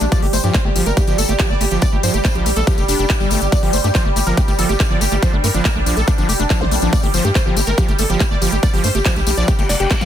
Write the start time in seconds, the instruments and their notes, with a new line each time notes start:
Already playing: synth texture G3
0.01 analog synth bass A#1, acid bass A3, analog synth lead D4, closed hi-hat, tambourine
0.12 acid bass F3, analog synth lead D5, kick, closed hi-hat, tambourine
0.22 analog synth bass G1, acid bass A3, analog synth lead G4, open hi-hat
0.33 analog synth bass G1, acid bass A3, analog synth lead C5, open hi-hat, tambourine
0.44 analog synth bass G2, acid bass F3, analog synth lead G4, closed hi-hat, tambourine
0.54 acid bass A3, analog synth lead C5, kick, clap, closed hi-hat, tambourine
0.65 analog synth bass G1, acid bass A3, analog synth lead G4
0.76 analog synth bass G1, acid bass F3, analog synth lead G4, open hi-hat, tambourine
0.86 analog synth bass G1, acid bass A3, analog synth lead A#4, closed hi-hat, tambourine
0.97 acid bass A3, analog synth lead G4, kick, closed hi-hat, tambourine
1.07 analog synth bass G1, acid bass F3, analog synth lead G4, closed hi-hat, tambourine
1.18 analog synth bass G1, acid bass A3, analog synth lead A4, open hi-hat, tambourine
1.29 analog synth bass G1, acid bass A3, analog synth lead G4, closed hi-hat, tambourine
1.39 acid bass F3, analog synth lead G4, kick, clap, closed hi-hat, tambourine
1.50 analog synth bass G1, acid bass A3, analog synth lead D5
1.61 analog synth bass G1, acid bass A3, analog synth lead G4, open hi-hat, tambourine
1.71 analog synth bass G1, acid bass F3, analog synth lead G4, closed hi-hat, tambourine
1.82 analog synth lead D5, kick, closed hi-hat, tambourine
1.93 analog synth bass G1, acid bass A3, analog synth lead G4
2.03 analog synth bass G2, acid bass F3, analog synth lead C5, open hi-hat, tambourine
2.14 analog synth bass G1, acid bass A3, analog synth lead G4, closed hi-hat, tambourine
2.25 acid bass A3, analog synth lead C5, kick, clap, closed hi-hat, tambourine
2.35 analog synth bass A#1, acid bass F3, analog synth lead G4, closed hi-hat
2.46 analog synth bass A#1, acid bass A3, analog synth lead G4, open hi-hat, tambourine
2.56 analog synth bass A#1, acid bass A3, analog synth lead A4, closed hi-hat, tambourine
2.67 acid bass F3, analog synth lead G4, kick, closed hi-hat, tambourine
2.78 analog synth bass F1, acid bass A3, analog synth lead G4, closed hi-hat, tambourine
2.88 analog synth bass F1, acid bass D4, analog synth lead G4, open hi-hat, tambourine
2.99 analog synth bass F1, acid bass D4, analog synth lead G4, closed hi-hat, tambourine
3.10 analog synth lead G4, kick, clap, closed hi-hat, tambourine
3.20 analog synth bass G1, acid bass G3, analog synth lead G4, tambourine
3.30 analog synth bass G1, acid bass A3, analog synth lead G4, open hi-hat, tambourine
3.42 analog synth bass G1, analog synth lead G4, closed hi-hat, tambourine
3.52 acid bass A3, analog synth lead D5, kick, closed hi-hat, tambourine
3.63 analog synth bass G1, acid bass F3, analog synth lead G4, open hi-hat
3.73 analog synth bass G1, acid bass A3, analog synth lead C5, open hi-hat, tambourine
3.84 analog synth bass G2, acid bass A3, analog synth lead G4, closed hi-hat, tambourine
3.95 acid bass F3, analog synth lead C5, kick, clap, closed hi-hat, tambourine
4.05 analog synth bass G1, acid bass A3, analog synth lead G4
4.16 analog synth bass G1, acid bass A3, analog synth lead G4, open hi-hat, tambourine
4.27 analog synth bass G1, acid bass F3, analog synth lead A#4, closed hi-hat, tambourine
4.37 acid bass A3, analog synth lead G4, kick, closed hi-hat, tambourine
4.48 analog synth bass G1, acid bass A3, analog synth lead G4, closed hi-hat, tambourine
4.59 analog synth bass G1, acid bass F3, analog synth lead A4, open hi-hat, tambourine
4.69 analog synth bass G1, acid bass A3, analog synth lead G4, closed hi-hat, tambourine
4.80 acid bass A3, analog synth lead G4, kick, clap, closed hi-hat, tambourine
4.91 analog synth bass G1, acid bass F3, analog synth lead D5
5.01 analog synth bass G1, acid bass A3, analog synth lead G4, open hi-hat, tambourine
5.12 analog synth bass G1, acid bass A3, analog synth lead G4, closed hi-hat
5.22 acid bass F3, analog synth lead C5, kick, closed hi-hat, tambourine
5.33 analog synth bass G1, acid bass A3, analog synth lead D4
5.44 analog synth bass G2, acid bass A3, analog synth lead A#4, open hi-hat, tambourine
5.54 analog synth bass G1, acid bass F3, analog synth lead D4, closed hi-hat, tambourine
5.65 acid bass A3, analog synth lead A#4, kick, clap, closed hi-hat, tambourine
5.76 analog synth bass A#1, acid bass A3, analog synth lead D4
5.86 analog synth bass A#1, acid bass F3, analog synth lead D4, open hi-hat, tambourine
5.97 analog synth bass A#1, acid bass A3, analog synth lead A4, closed hi-hat, tambourine
6.08 acid bass A3, analog synth lead D4, kick, closed hi-hat, tambourine
6.18 analog synth bass G1, acid bass F3, analog synth lead D4, closed hi-hat, tambourine
6.29 analog synth bass F1, acid bass A3, analog synth lead G4, open hi-hat, tambourine
6.40 analog synth bass F1, acid bass A3, analog synth lead D4, closed hi-hat, tambourine
6.50 acid bass F3, analog synth lead D4, kick, clap, closed hi-hat, tambourine
6.61 analog synth bass A#1, acid bass A3, analog synth lead C5, zap
6.71 analog synth bass A#1, acid bass A3, analog synth lead D4, open hi-hat, tambourine
6.82 analog synth bass A#1, acid bass F3, analog synth lead D4, closed hi-hat, tambourine
6.93 acid bass A3, analog synth lead D5, kick, closed hi-hat, tambourine
7.03 analog synth bass G1, acid bass A3, analog synth lead G4, open hi-hat
7.14 analog synth bass G1, acid bass F3, analog synth lead C5, open hi-hat, tambourine
7.25 analog synth bass G2, acid bass A3, analog synth lead G4, closed hi-hat, tambourine
7.35 acid bass A3, analog synth lead C5, kick, clap, closed hi-hat, tambourine
7.46 analog synth bass G1, acid bass F3, analog synth lead G4
7.57 analog synth bass G1, acid bass A3, analog synth lead G4, open hi-hat, tambourine
7.67 analog synth bass G1, acid bass A3, analog synth lead A#4, closed hi-hat, tambourine
7.78 acid bass F3, analog synth lead G4, kick, closed hi-hat, tambourine
7.88 analog synth bass G1, acid bass A3, analog synth lead G4, closed hi-hat, tambourine
7.98 analog synth bass G1, acid bass A3, analog synth lead A4, open hi-hat, tambourine
8.10 analog synth bass G1, acid bass F3, analog synth lead G4, closed hi-hat, tambourine
8.20 acid bass A3, analog synth lead G4, kick, clap, closed hi-hat, tambourine
8.31 analog synth bass G1, acid bass A3, analog synth lead D5
8.42 analog synth bass G1, acid bass F3, analog synth lead G4, open hi-hat, tambourine
8.52 analog synth bass G1, acid bass A3, analog synth lead G4, closed hi-hat, tambourine
8.63 acid bass A3, analog synth lead D5, kick, closed hi-hat, tambourine
8.74 analog synth bass G1, acid bass F3, analog synth lead G4, open hi-hat, tambourine
8.84 analog synth bass G2, acid bass A3, analog synth lead C5, open hi-hat, tambourine
8.95 analog synth bass G1, acid bass A3, analog synth lead G4, closed hi-hat, tambourine
9.05 acid bass F3, analog synth lead C5, kick, clap, closed hi-hat, tambourine
9.16 analog synth bass A#1, acid bass A3, analog synth lead G4, closed hi-hat, tambourine
9.27 analog synth bass A#1, acid bass A3, analog synth lead G4, open hi-hat, tambourine
9.37 analog synth bass A#1, acid bass F3, analog synth lead D5, closed hi-hat, tambourine
9.48 acid bass A3, analog synth lead G4, kick, closed hi-hat, tambourine, reverse cymbal
9.59 analog synth bass G1, acid bass A3, analog synth lead G4, closed hi-hat, tambourine
9.69 analog synth bass F1, analog synth lead D5, snare, open hi-hat, tambourine
9.80 analog synth bass F1, acid bass G4, analog synth lead G4, closed hi-hat, tambourine
9.90 acid bass G3, analog synth lead G4, kick, snare, clap, closed hi-hat, tambourine
10.01 analog synth bass A#1, acid bass G3, analog synth lead F5, closed hi-hat, mid tom, tambourine